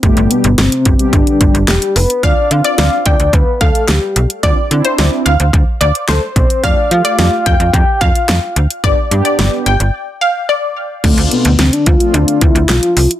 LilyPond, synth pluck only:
\new Staff \with { instrumentName = "Synth pluck" } { \time 4/4 \key d \dorian \tempo 4 = 109 r1 | f''16 r8 d''8 r16 g''16 r8. f''16 r4 r16 | d''16 r8 c''8 r16 f''16 r8. d''16 r16 c''8. r16 | f''16 r8 d''8 r16 g''16 r8. f''16 r4 r16 |
d''16 r8 d''8 r16 g''16 r8. f''16 r16 d''8. r16 | r1 | }